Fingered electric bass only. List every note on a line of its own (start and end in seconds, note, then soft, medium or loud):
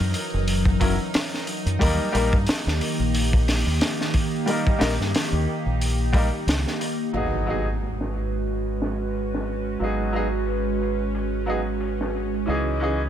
0.00 0.13 F#2 medium
0.34 0.96 F#1 medium
1.66 1.79 F#2 medium
1.81 1.98 D#2 medium
2.14 2.31 A#1 medium
2.33 2.46 G2 medium
2.66 2.79 D#2 loud
2.99 3.63 A#1 medium
3.66 3.79 D#2 medium
4.81 4.97 A#1 medium
4.99 5.12 G2 medium
5.32 5.45 D#2 loud
5.66 6.29 A#1 medium
6.47 6.64 C#2 medium
7.13 9.78 G#1 medium
9.80 12.44 G#1 medium
12.48 13.09 C#2 medium